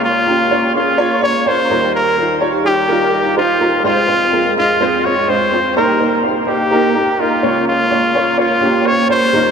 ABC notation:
X:1
M:4/4
L:1/8
Q:1/4=126
K:Bbdor
V:1 name="Trumpet"
F3 F2 d c2 | B2 z G3 F2 | F3 F2 d c2 | B2 z G3 F2 |
F3 F2 d c2 |]
V:2 name="Upright piano"
[B,DFd] [B,DFG] [B,DFd] [B,DFA] [B,DFd] [B,DFd] [B,DFd] [G,EFB]- | [G,EFB] [G,EFB] [G,EFd] [G,EFG] [G,EFB] [G,EFB] [G,EFc] [G,EFB] | [A,CFc] [A,CFc] [A,CFB] [A,CFe] [A,CFc] [A,CFe] [A,CFc] [A,CFc] | [B,EGc] [B,EGc] [B,EGc] [B,EGc] [B,EGB] [B,EGB] [B,EGB] [B,DFd]- |
[B,DFd] [B,DFd] [B,DFd] [B,DFd] [B,DFG] [B,DFc] [B,DFd] [G,EFB] |]
V:3 name="Upright piano" clef=bass
[D,,D,]6- [D,,D,] [E,,E,]- | [E,,E,]6- [E,,E,] z | [F,,,F,,]8 | [C,,C,]6- [C,,C,] [D,,D,]- |
[D,,D,]6- [D,,D,] [E,,E,] |]